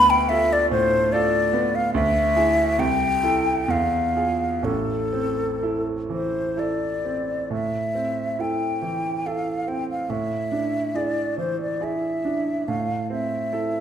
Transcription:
Already playing: D2 B3 B5
0.10 G5
0.29 F4 A4 E5
0.53 D5
0.71 A2 C5
1.12 F4 A4 D5
1.53 B3
1.75 F5
1.94 D2 E5
2.36 E4 G#4
2.78 C2 G5
3.23 E4 A4
3.68 E2 F5
4.16 F4 G#4
4.62 A1 A2 A4
5.13 C4
5.63 E4 A4
6.10 E3 C5
6.57 E4 A4 D5
7.05 C4
7.50 A2 E5
7.95 C4
8.39 E4 A4 G5
8.82 E3
9.26 E4 A4 F5
9.67 C4 G5
9.90 F5
10.10 A2 E5
10.52 D4
10.94 E4 G#4 D5
11.38 E3 C5
11.62 D5
11.81 E4 G#4 E5
12.25 D4
12.68 A2 F5
13.10 C4 E5
13.52 E4 A4

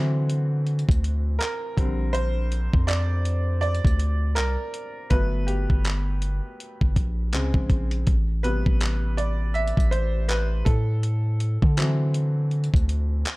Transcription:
Already playing: D3 E3 F#3 C4 F#4
0.30 closed hi-hat
0.67 closed hi-hat
0.79 closed hi-hat
0.89 D2, kick, closed hi-hat
1.04 closed hi-hat
1.39 A#4, clap, closed hi-hat
1.77 A#1 D3 G3 C4, kick, closed hi-hat
2.13 C5, closed hi-hat
2.52 closed hi-hat
2.73 F2, kick
2.87 D5, clap, closed hi-hat
3.25 closed hi-hat
3.61 D5, closed hi-hat
3.75 closed hi-hat
3.85 D2, kick, closed hi-hat
4.00 closed hi-hat
4.35 C2 A#4, clap, closed hi-hat
4.74 closed hi-hat
5.10 G1 F#3 A3 B3 B4, kick, closed hi-hat
5.47 G4, closed hi-hat
5.70 G1, kick
5.85 clap, closed hi-hat
6.22 closed hi-hat
6.60 closed hi-hat
6.81 G1, kick
6.96 A#1, kick, closed hi-hat
7.33 C#2 C#3 G#3 C4, clap, closed hi-hat
7.54 A#1, kick
7.70 A#1, kick, closed hi-hat
7.91 closed hi-hat
8.07 A1, kick, closed hi-hat
8.43 C3 G3 B3 B4, closed hi-hat
8.66 A1, kick
8.81 clap, closed hi-hat
9.17 D5, closed hi-hat
9.54 E5, closed hi-hat
9.68 closed hi-hat
9.77 A1, kick, closed hi-hat
9.91 C5, closed hi-hat
10.28 B4, clap, closed hi-hat
10.65 A2 A4, kick, closed hi-hat
11.03 closed hi-hat
11.40 closed hi-hat
11.62 D3, kick
11.77 E3 F#3 C4, clap, closed hi-hat
12.14 closed hi-hat
12.51 closed hi-hat
12.64 closed hi-hat
12.74 D2, kick, closed hi-hat
12.89 closed hi-hat
13.25 clap, closed hi-hat

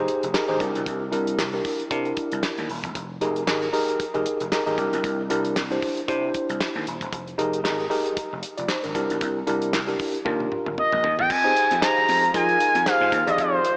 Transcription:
Already playing: D#4 G4 G#4 C5
0.08 closed hi-hat
0.23 F1, closed hi-hat
0.34 D#4 G4 G#4 A#4, snare, clap
0.48 G#1 D#4 G4 G#4 C5
0.60 C2 D4 E4 G4 A#4, kick, closed hi-hat
0.75 B1, closed hi-hat
0.86 C2, kick, closed hi-hat
1.12 C2 D4 E4 G4 A#4, closed hi-hat
1.27 closed hi-hat
1.39 C2, snare, clap
1.53 D4 E4 G4 A#4
1.65 kick, open hi-hat
1.80 closed hi-hat
1.91 C3 D4 E4 G4 A#4, kick, closed hi-hat
2.05 closed hi-hat
2.17 kick, closed hi-hat
2.32 C2, closed hi-hat
2.43 snare, clap
2.58 D#2, closed hi-hat
2.69 D#1, open hi-hat
2.84 E1, kick, closed hi-hat
2.95 F1, kick, closed hi-hat
3.21 F1 D#4 G4 G#4 A#4, closed hi-hat
3.36 closed hi-hat
3.47 G#1 D#4 G4 G#4 A#4, snare, clap
3.63 closed hi-hat
3.73 D#4 G4 G#4 A#4, open hi-hat
3.88 closed hi-hat
4.00 kick, closed hi-hat
4.14 F1 D#4 G4 G#4 A#4, closed hi-hat
4.26 closed hi-hat
4.40 F1, closed hi-hat
4.52 D#4 G4 G#4 A#4, snare, clap
4.66 G#1 D#4 G4 G#4 A#4, closed hi-hat
4.78 C2 D4 E4 G4 A#4, kick, closed hi-hat
4.93 B1, closed hi-hat
5.04 C2, kick, closed hi-hat
5.30 C2 D4 E4 G4 A#4, closed hi-hat
5.45 closed hi-hat
5.56 C2, snare, clap
5.71 D4 E4 G4 C5, closed hi-hat
5.82 kick, open hi-hat
5.97 closed hi-hat
6.08 C3 D4 E4 G4 C5, kick, closed hi-hat
6.34 kick, closed hi-hat
6.49 C2, closed hi-hat
6.60 snare, clap
6.76 D#2
6.87 D#1, closed hi-hat
7.01 E1, kick, closed hi-hat
7.13 F1, kick, closed hi-hat
7.27 closed hi-hat
7.38 F1 D#4 G4 G#4 A#4, closed hi-hat
7.53 closed hi-hat
7.64 G#1 D#4 G4 G#4 A#4, snare, clap
7.90 D#4 G4 G#4 A#4, open hi-hat
8.06 closed hi-hat
8.17 kick, closed hi-hat
8.33 F1
8.43 closed hi-hat
8.57 F1 F4 D5, closed hi-hat
8.68 D#4 C5, snare, clap
8.83 G#1 D4 A#4, closed hi-hat
8.95 C2 D4 E4 G4 A#4, kick, closed hi-hat
9.10 B1, closed hi-hat
9.21 C2, kick, closed hi-hat
9.47 C2 D4 E4 G4 A#4, closed hi-hat
9.62 closed hi-hat
9.73 C2, snare, clap
9.87 D4 E4 G4 A#4, closed hi-hat
9.99 kick, open hi-hat
10.14 closed hi-hat
10.25 D#2 D4 F4 G4 A#4, kick, high tom
10.40 high tom
10.52 mid tom
10.66 G1, mid tom
10.78 D#5, mid tom
10.92 A#1, mid tom
11.04 D#2, floor tom
11.19 E2 G5, floor tom
11.30 F2 D#3 F3 G#3 F4 G#5, kick, crash
11.44 D#4 G4 G#4 C5
11.56 closed hi-hat
11.71 F2, closed hi-hat
11.82 D#4 G4 G#4 C5 A#5, snare, clap
12.08 F2, open hi-hat
12.23 closed hi-hat
12.34 F3 D#4 F4 G#4 A#4 G#5, kick, closed hi-hat
12.49 closed hi-hat
12.60 closed hi-hat
12.75 F2, closed hi-hat
12.86 D#4 G4 G#4 C5 F5, snare, clap
13.01 G#2
13.12 D#2, kick, closed hi-hat
13.27 E2 D#4 G4 G#4 D5 D#5, closed hi-hat
13.38 F2 C5, kick, closed hi-hat
13.64 closed hi-hat

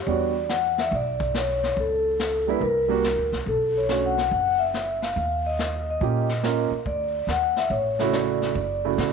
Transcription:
0.03 C#5 D5, brush sweep
0.07 E2 G3 B3 D4 F#4, kick
0.49 F#5, snare, hi-hat pedal
0.78 E5, snare
0.91 B1 D5, brush sweep, kick
1.20 kick
1.34 C#5, snare, hi-hat pedal
1.63 snare
1.77 C#2 A4, brush sweep, kick
2.19 snare, hi-hat pedal
2.47 G3 A#3 D4 E4 B4
2.61 C2 A#4, brush sweep, kick
2.88 G3 A#3 D4 F#4
3.04 snare, hi-hat pedal
3.18 D2
3.32 C2, snare
3.46 B1 A4, brush sweep, kick
3.77 C#5
3.88 A3 C#4 D4 F#4, snare, hi-hat pedal
4.06 F#5
4.18 snare
4.31 F#1 F#5, brush sweep, kick
4.59 E5
4.74 snare, hi-hat pedal
5.02 F5, snare
5.16 D#2, brush sweep, kick
5.46 D#5
5.59 snare, hi-hat pedal
5.90 D#5
6.01 A#2 A#3 C#4 F4 G4, brush sweep, kick
6.29 snare
6.43 A#3 C#4 F4 A#4, snare, hi-hat pedal
6.71 muted upright bass stroke
6.86 D2 D5, brush sweep, kick
7.27 D#2 F#5, snare, hi-hat pedal
7.56 E5, snare
7.70 A1 C#5, brush sweep, kick
7.99 C#3 A3 E4 F#4, snare
8.13 D5, snare, hi-hat pedal
8.42 snare
8.55 F#1 D5, brush sweep, kick
8.85 C#3 A3 E4 F#4
8.98 A2, snare, hi-hat pedal

